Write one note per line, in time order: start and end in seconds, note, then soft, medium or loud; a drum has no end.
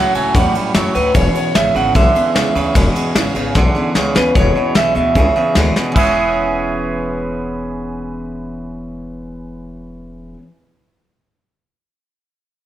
0.00 0.13 A2 medium
0.00 0.13 F#3 medium
0.00 0.15 F#3 medium
0.00 0.15 A3 medium
0.00 0.15 C#4 medium
0.00 0.14 F#4 medium
0.00 0.14 F#5 loud
0.15 0.29 C#2 medium
0.15 0.33 A2 medium
0.15 0.33 F#3 medium
0.15 0.35 F#3 soft
0.15 0.35 A3 medium
0.15 0.35 C#4 medium
0.15 0.35 F#4 medium
0.15 0.34 G#5 loud
0.15 ride medium
0.35 0.49 E2 loud
0.35 0.71 A2 medium
0.35 0.55 A2 medium
0.35 0.56 E3 medium
0.35 0.56 F#3 medium
0.35 0.71 G3 medium
0.35 0.56 A3 medium
0.35 0.55 C#4 medium
0.35 0.54 F#4 medium
0.35 0.54 F#5 medium
0.35 kick loud
0.35 ride medium
0.55 0.75 F#3 soft
0.55 0.75 A3 medium
0.55 0.76 C#4 medium
0.55 0.76 F#4 medium
0.55 muted upright bass stroke medium
0.55 ride medium
0.74 0.90 F#2 medium
0.74 0.93 A2 medium
0.74 0.94 F#3 medium
0.74 0.96 F#3 medium
0.74 0.96 A3 medium
0.74 0.95 C#4 medium
0.74 0.94 F#4 medium
0.74 snare loud
0.74 ride medium
0.94 1.10 D2 medium
0.94 1.13 A2 medium
0.94 1.13 F#3 medium
0.94 1.15 F#3 soft
0.94 1.15 A3 soft
0.94 1.15 C#4 medium
0.94 1.16 F#4 soft
0.94 1.15 B4 medium
0.94 ride medium
1.14 1.29 E1 medium
1.14 1.51 E2 medium
1.14 1.51 B2 medium
1.14 1.35 E3 medium
1.14 1.35 G#3 medium
1.14 1.36 B3 medium
1.14 1.35 C#4 medium
1.14 1.34 G#4 medium
1.14 1.34 C#5 loud
1.14 kick loud
1.14 ride medium
1.35 1.54 B3 soft
1.35 1.55 C#4 soft
1.35 1.55 G#4 medium
1.35 1.54 C#5 medium
1.35 muted upright bass stroke medium
1.35 ride medium
1.55 1.70 G#1 medium
1.55 1.73 E2 medium
1.55 1.74 C#3 medium
1.55 1.75 G#3 medium
1.55 1.75 B3 medium
1.55 1.74 C#4 medium
1.55 1.73 G#4 medium
1.55 1.74 E5 loud
1.55 snare loud
1.55 ride medium
1.75 1.90 G#1 loud
1.75 1.93 E2 medium
1.75 1.93 C#3 medium
1.75 1.94 B3 soft
1.75 1.95 C#4 soft
1.75 1.95 G#4 medium
1.75 1.95 F#5 medium
1.75 ride medium
1.95 2.10 B1 medium
1.95 2.31 E2 medium
1.95 2.32 D3 medium
1.95 2.15 E3 medium
1.95 2.15 G#3 medium
1.95 2.15 B3 medium
1.95 2.14 C#4 medium
1.95 2.14 G#4 medium
1.95 3.92 E5 medium
1.95 kick loud
1.95 ride medium
2.15 2.35 B3 soft
2.15 2.35 C#4 medium
2.15 2.35 G#4 medium
2.15 muted upright bass stroke medium
2.15 ride medium
2.35 2.50 C#2 medium
2.35 2.53 E2 medium
2.35 2.54 C#3 loud
2.35 2.56 G#3 medium
2.35 2.56 B3 medium
2.35 2.55 C#4 medium
2.35 2.54 G#4 medium
2.35 snare loud
2.35 ride medium
2.55 2.70 D2 loud
2.55 2.74 E2 medium
2.55 2.74 C#3 medium
2.55 2.75 B3 soft
2.55 2.75 C#4 medium
2.55 2.75 G#4 medium
2.55 ride medium
2.75 2.90 E1 medium
2.75 3.12 E2 medium
2.75 3.12 B2 medium
2.75 2.96 E3 medium
2.75 2.96 G#3 medium
2.75 2.96 B3 loud
2.75 2.95 C#4 loud
2.75 2.94 G#4 loud
2.75 kick loud
2.75 ride loud
2.95 3.15 B3 soft
2.95 3.15 C#4 soft
2.95 3.16 G#4 medium
2.95 muted upright bass stroke medium
2.95 ride medium
3.15 3.30 G#1 medium
3.15 3.34 E2 medium
3.15 3.34 C#3 medium
3.15 3.36 G#3 medium
3.15 3.36 B3 medium
3.15 3.35 C#4 medium
3.15 3.34 G#4 medium
3.15 snare loud
3.15 ride medium
3.35 3.50 G#1 medium
3.35 3.54 E2 medium
3.35 3.54 C#3 medium
3.35 3.54 B3 medium
3.35 3.54 C#4 medium
3.35 3.55 G#4 medium
3.35 ride medium
3.55 3.70 B1 medium
3.55 3.92 E2 medium
3.55 3.92 D3 loud
3.55 3.75 E3 medium
3.55 3.75 G#3 loud
3.55 3.76 B3 medium
3.55 3.75 C#4 medium
3.55 3.74 G#4 medium
3.55 kick loud
3.55 snare medium
3.75 3.95 B3 soft
3.75 3.95 C#4 medium
3.75 3.95 G#4 medium
3.75 muted upright bass stroke medium
3.95 4.10 C#2 medium
3.95 4.14 E2 medium
3.95 4.14 C#3 medium
3.95 4.15 G#3 medium
3.95 4.16 B3 medium
3.95 4.15 C#4 medium
3.95 4.14 G#4 medium
3.95 snare medium
4.15 4.30 D2 medium
4.15 4.34 E2 medium
4.15 4.34 C#3 medium
4.15 4.36 B3 medium
4.15 4.36 C#4 medium
4.15 4.35 G#4 medium
4.15 4.34 B4 medium
4.15 snare medium
4.35 4.53 E1 medium
4.35 4.54 E2 medium
4.35 4.54 B2 loud
4.35 4.56 E3 medium
4.35 4.56 G#3 medium
4.35 4.56 B3 medium
4.35 4.55 C#4 medium
4.35 4.54 G#4 medium
4.35 4.77 C#5 medium
4.35 kick loud
4.35 closed hi-hat medium
4.55 4.74 E2 medium
4.55 4.74 B2 medium
4.55 4.74 B3 soft
4.55 4.75 C#4 soft
4.55 4.75 G#4 soft
4.55 muted upright bass stroke medium
4.75 4.94 B1 medium
4.75 4.94 E2 medium
4.75 4.94 B2 medium
4.75 4.95 E3 medium
4.75 4.96 G#3 medium
4.75 4.96 B3 medium
4.75 4.94 C#4 medium
4.75 4.93 G#4 medium
4.75 4.94 E5 loud
4.75 snare loud
4.75 closed hi-hat medium
4.94 5.14 D2 loud
4.94 5.14 E2 medium
4.94 5.14 B2 medium
4.94 5.15 B3 soft
4.94 5.16 C#4 soft
4.94 5.15 G#4 soft
4.94 5.72 E5 medium
4.94 closed hi-hat medium
5.15 5.33 C#2 loud
5.15 5.34 E2 medium
5.15 5.34 C#3 medium
5.15 5.36 G#3 medium
5.15 5.36 B3 medium
5.15 5.36 C#4 medium
5.15 5.35 G#4 medium
5.15 kick loud
5.15 closed hi-hat medium
5.36 5.54 E2 medium
5.36 5.54 C#3 medium
5.36 5.56 B3 soft
5.36 5.56 C#4 soft
5.36 5.56 G#4 medium
5.36 muted upright bass stroke medium
5.55 5.74 D2 medium
5.55 5.74 E2 medium
5.55 5.74 B2 medium
5.55 5.76 E3 medium
5.55 5.76 G#3 loud
5.55 5.77 B3 loud
5.55 5.76 C#4 loud
5.55 5.75 G#4 loud
5.55 snare loud
5.55 closed hi-hat medium
5.75 5.94 E2 medium
5.75 5.94 B2 medium
5.75 5.97 B3 soft
5.75 5.97 C#4 medium
5.75 5.96 G#4 medium
5.75 muted upright bass stroke medium
5.75 snare medium
5.92 10.33 E1 medium
5.92 10.34 E3 medium
5.92 10.36 E3 loud
5.96 10.38 G#3 medium
5.96 10.38 B3 medium
5.96 10.39 C#4 medium
5.96 10.41 G#4 loud
5.96 10.34 E5 medium
5.96 kick loud
5.96 crash medium
6.00 10.42 B3 medium
6.00 10.45 C#4 medium
6.06 10.48 G#4 medium